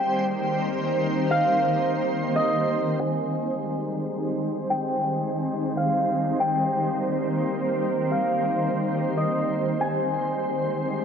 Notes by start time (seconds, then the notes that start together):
Already playing: D#3 G3 A#3 C4 C5 F5 G5
1.31 F5
2.36 D#5
3.00 D#3 G3 G#3 C4 C5 G#5
4.70 G5
5.77 F5
6.40 A#3 G5
8.12 F5
9.17 D#5
9.81 D#3 G#3 G#5